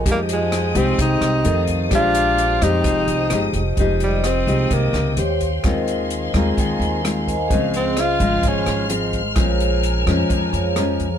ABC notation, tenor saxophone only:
X:1
M:4/4
L:1/8
Q:1/4=129
K:Fm
V:1 name="Tenor saxophone"
B, A,2 C E3 z | F3 E4 z | z G, C2 B,2 z2 | z8 |
z C F2 D2 z2 | z8 |]